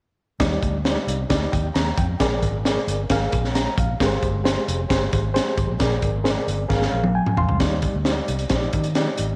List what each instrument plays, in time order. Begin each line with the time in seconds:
0.40 fingered electric bass D#2, reed electric piano G3 D#4 G4 D5, kick, snare, closed hi-hat
0.62 fingered electric bass D2, kick, closed hi-hat
0.85 reed electric piano D#4 G4 C5, snare, closed hi-hat
0.91 reed electric piano D5
1.07 fingered electric bass C2, closed hi-hat
1.29 fingered electric bass D2, reed electric piano D#4 G4 D5, kick, snare, closed hi-hat
1.52 fingered electric bass D#2, reed electric piano G5, kick, closed hi-hat
1.74 fingered electric bass D#2, reed electric piano A#5, snare, closed hi-hat
1.97 fingered electric bass F2, reed electric piano G5, kick, closed hi-hat
2.20 fingered electric bass A#1, reed electric piano A#2 G#4 A#4 D5, kick, snare, closed hi-hat
2.42 fingered electric bass G#1, kick, closed hi-hat
2.65 reed electric piano G#4 A#4 D5, snare, closed hi-hat
2.87 fingered electric bass G1, closed hi-hat
3.10 fingered electric bass G#1, reed electric piano G#4 A#4 F5, kick, snare, closed hi-hat
3.32 fingered electric bass A#1, kick, closed hi-hat
3.44 snare
3.55 reed electric piano A#5, snare, closed hi-hat
3.78 fingered electric bass A#1, reed electric piano F5, kick, closed hi-hat
4.00 fingered electric bass G#1, reed electric piano G#3 G4 G#4 A#4, kick, snare, closed hi-hat
4.06 reed electric piano C5
4.22 fingered electric bass G1, kick, closed hi-hat
4.44 reed electric piano G4 G#4 C5, snare, closed hi-hat
4.68 fingered electric bass F1, closed hi-hat
4.89 fingered electric bass G1, reed electric piano G4 G#4 C5, kick, snare, closed hi-hat
5.13 fingered electric bass G#1, kick, closed hi-hat
5.34 reed electric piano G4 G#4 C5, snare, closed hi-hat
5.58 fingered electric bass G#1, kick, closed hi-hat
5.69 fingered electric bass A#1
5.79 fingered electric bass A#1, reed electric piano A#2 G#4 A#4 D5, kick, snare, closed hi-hat
6.02 fingered electric bass G#1, kick, closed hi-hat
6.24 reed electric piano G#4 A#4 C5, snare, closed hi-hat
6.30 reed electric piano D5
6.48 fingered electric bass G1, closed hi-hat
6.69 fingered electric bass G#1, reed electric piano G#4 A#4 F5, kick, snare
6.82 snare
6.92 fingered electric bass A#1, reed electric piano F5
7.04 high tom
7.15 reed electric piano G5 G#5
7.26 mid tom
7.37 fingered electric bass A#1, reed electric piano F5 C6, floor tom
7.49 fingered electric bass C2, floor tom
7.60 fingered electric bass D#2, reed electric piano G3 D#4 G4 D5, kick, snare, closed hi-hat
7.82 kick, closed hi-hat
7.95 fingered electric bass D2
8.05 reed electric piano D#4 G4 C5, snare, closed hi-hat
8.11 reed electric piano D5
8.28 fingered electric bass C2, closed hi-hat
8.39 closed hi-hat
8.49 fingered electric bass A#1, reed electric piano D#4 G4 C5, kick, snare, closed hi-hat
8.56 reed electric piano D5
8.73 fingered electric bass D#3, kick, closed hi-hat
8.84 closed hi-hat
8.95 reed electric piano D#4 G4 D5, snare, closed hi-hat
9.17 fingered electric bass G#1, closed hi-hat